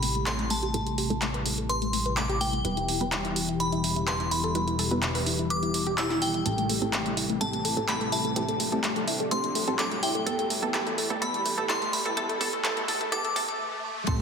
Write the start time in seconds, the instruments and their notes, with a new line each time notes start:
Already playing: analog synth bass A1, analog synth pad C3 G3 A3 E4 G4, synth bell B5, riser
0.03 synth arpeggio sound A3, open hi-hat
0.15 synth arpeggio sound A3, closed hi-hat
0.26 synth arpeggio sound A4, synth bell C6, clap, closed hi-hat
0.39 synth arpeggio sound A3, closed hi-hat
0.50 synth arpeggio sound A3, synth bell A5, open hi-hat
0.63 synth arpeggio sound G4, closed hi-hat
0.74 synth pluck A2 A3 C4 E4 G4 A4, synth arpeggio sound A3, closed hi-hat
0.87 synth arpeggio sound A3, closed hi-hat
0.98 synth arpeggio sound G4, open hi-hat
1.10 synth pluck A2 A3 C4 E4 G4 A4, synth arpeggio sound A3, closed hi-hat
1.22 synth arpeggio sound A3, clap, closed hi-hat
1.34 synth arpeggio sound B4, closed hi-hat
1.46 synth arpeggio sound A3, open hi-hat
1.58 synth arpeggio sound A3, closed hi-hat
1.69 synth arpeggio sound B4, synth bell C6, closed hi-hat
1.82 synth arpeggio sound A3, closed hi-hat
1.93 synth arpeggio sound A3, open hi-hat
2.06 synth arpeggio sound B4, closed hi-hat
2.17 synth arpeggio sound A3, synth bell D6, clap, closed hi-hat
2.29 synth arpeggio sound G4, closed hi-hat
2.41 synth arpeggio sound A3, synth bell G5, open hi-hat
2.53 synth arpeggio sound A3, closed hi-hat
2.65 analog synth bass E1, analog synth pad B2 E3 G4, synth pluck G3 B3 E4 G4 B4, synth arpeggio sound B4, closed hi-hat
2.77 synth arpeggio sound E4, closed hi-hat
2.88 synth arpeggio sound E4, open hi-hat
3.01 synth pluck G3 B3 E4 G4 B4, synth arpeggio sound B4, closed hi-hat
3.12 synth arpeggio sound E4, clap, closed hi-hat
3.25 synth arpeggio sound E4, closed hi-hat
3.36 synth arpeggio sound G4, open hi-hat
3.49 synth arpeggio sound E4, closed hi-hat
3.60 synth arpeggio sound E4, synth bell B5, closed hi-hat
3.72 synth arpeggio sound E4, closed hi-hat
3.84 synth arpeggio sound E4, open hi-hat
3.96 synth arpeggio sound E4, closed hi-hat
4.08 synth arpeggio sound B4, synth bell C6, clap, closed hi-hat
4.20 synth arpeggio sound E4, closed hi-hat
4.31 synth arpeggio sound E4, synth bell B5, open hi-hat
4.44 synth arpeggio sound A4, closed hi-hat
4.55 synth pluck G3 B3 E4 G4 B4, synth arpeggio sound E4, closed hi-hat
4.67 synth arpeggio sound E4, closed hi-hat
4.79 synth arpeggio sound A4, open hi-hat
4.91 synth pluck G3 B3 E4 G4 B4, synth arpeggio sound E4, closed hi-hat
5.03 synth arpeggio sound E4, clap, closed hi-hat
5.15 synth arpeggio sound B4, open hi-hat
5.26 synth arpeggio sound E4, open hi-hat
5.39 synth arpeggio sound E4, closed hi-hat
5.50 synth arpeggio sound B4, synth bell D6, closed hi-hat
5.63 synth arpeggio sound E4, closed hi-hat
5.74 synth arpeggio sound E4, open hi-hat
5.87 synth arpeggio sound G4, closed hi-hat
5.98 synth arpeggio sound E4, synth bell E6, clap, closed hi-hat
6.10 synth arpeggio sound E4, clap, closed hi-hat
6.22 synth arpeggio sound E4, synth bell G5, open hi-hat
6.34 synth arpeggio sound E4, closed hi-hat
6.46 analog synth bass A1, synth pluck A2 A3 C4 E4 G4 A4, analog synth pad C3 A3, synth arpeggio sound A4, closed hi-hat
6.58 synth arpeggio sound A3, closed hi-hat
6.69 synth arpeggio sound A3, open hi-hat
6.82 synth pluck A2 A3 C4 E4 G4 A4, synth arpeggio sound A4, closed hi-hat
6.93 synth arpeggio sound A3, clap, closed hi-hat
7.06 synth arpeggio sound A3, closed hi-hat
7.17 synth arpeggio sound E4, open hi-hat
7.29 synth arpeggio sound A3, closed hi-hat
7.41 synth pluck A2 A3 C4 E4 G4 A4, synth arpeggio sound A4, synth bell A5, closed hi-hat
7.53 synth arpeggio sound A3, closed hi-hat
7.65 synth arpeggio sound A3, open hi-hat
7.77 synth pluck A2 A3 C4 E4 G4 A4, synth arpeggio sound A4, closed hi-hat
7.88 synth arpeggio sound A3, synth bell B5, clap, closed hi-hat
8.01 synth arpeggio sound A3, closed hi-hat
8.12 synth arpeggio sound E4, synth bell A5, open hi-hat
8.25 synth arpeggio sound A3, closed hi-hat
8.36 synth pluck A2 A3 C4 E4 G4 A4, analog synth pad D4, synth arpeggio sound A4, closed hi-hat
8.48 synth arpeggio sound A3, closed hi-hat
8.60 synth arpeggio sound A3, open hi-hat
8.72 synth pluck A2 A3 C4 E4 G4 A4, synth arpeggio sound A4, closed hi-hat
8.84 synth arpeggio sound A3, clap, closed hi-hat
8.96 synth arpeggio sound A3, closed hi-hat
9.08 synth arpeggio sound E4, open hi-hat
9.20 synth arpeggio sound A3, closed hi-hat
9.31 synth pluck A2 A3 C4 E4 G4 A4, synth arpeggio sound A4, synth bell C6, closed hi-hat
9.44 synth arpeggio sound A3, closed hi-hat
9.55 synth arpeggio sound A3, open hi-hat
9.68 synth pluck A2 A3 C4 E4 G4 A4, synth arpeggio sound A4, closed hi-hat
9.79 synth arpeggio sound A3, synth bell D6, clap, closed hi-hat
9.91 synth arpeggio sound A3, closed hi-hat
10.03 synth arpeggio sound E4, synth bell G5, open hi-hat
10.15 synth arpeggio sound A3, closed hi-hat
10.26 analog synth bass E1, synth pluck A2 A3 B3 E4 G4 A4, analog synth pad B2 E3 G3 E4, synth arpeggio sound A4, closed hi-hat
10.39 synth arpeggio sound A3, closed hi-hat
10.50 synth arpeggio sound A3, open hi-hat
10.62 synth pluck A2 A3 B3 E4 G4 A4, synth arpeggio sound A4, closed hi-hat
10.74 synth pluck A2 A3 B3 E4 G4 A4, synth arpeggio sound A4, clap, closed hi-hat
10.86 synth arpeggio sound A3, closed hi-hat
10.98 synth arpeggio sound A3, open hi-hat
11.10 synth pluck A2 A3 B3 E4 G4 A4, synth arpeggio sound A4, closed hi-hat
11.22 synth pluck A2 A3 B3 E4 G4 A4, synth arpeggio sound A4, synth bell B5, closed hi-hat
11.34 synth arpeggio sound A3, closed hi-hat
11.45 synth arpeggio sound A3, open hi-hat
11.58 synth pluck A2 A3 B3 E4 G4 A4, synth arpeggio sound A4, closed hi-hat
11.69 synth pluck A2 A3 B3 E4 G4 A4, synth arpeggio sound A4, synth bell C6, clap, closed hi-hat
11.81 synth arpeggio sound A3, closed hi-hat
11.93 synth arpeggio sound A3, synth bell B5, open hi-hat
12.05 synth pluck A2 A3 B3 E4 G4 A4, synth arpeggio sound A4, closed hi-hat
12.17 synth pluck A2 A3 B3 E4 G4 A4, synth arpeggio sound A4, analog synth pad A4, closed hi-hat
12.29 synth arpeggio sound A3, closed hi-hat
12.41 synth pluck A2 A3 B3 E4 G4 A4, synth arpeggio sound A4, open hi-hat
12.53 synth arpeggio sound A3, closed hi-hat
12.64 synth pluck A2 A3 B3 E4 G4 A4, synth arpeggio sound A4, clap, closed hi-hat
12.77 synth arpeggio sound A3, closed hi-hat
12.88 synth pluck A2 A3 B3 E4 G4 A4, synth arpeggio sound A4, open hi-hat
13.01 synth arpeggio sound A3, closed hi-hat
13.12 synth pluck A2 A3 B3 E4 G4 A4, synth arpeggio sound A4, synth bell D6, closed hi-hat
13.24 synth arpeggio sound A3, closed hi-hat
13.36 synth pluck A2 A3 B3 E4 G4 A4, synth arpeggio sound A4, open hi-hat
13.48 synth arpeggio sound A3, closed hi-hat
14.07 analog synth bass A1, synth pluck A2 A3 C4 E4 G4 A4, analog synth pad C3 G3 A3 E4 G4, synth arpeggio sound A4, synth bell C6, kick, closed hi-hat, ride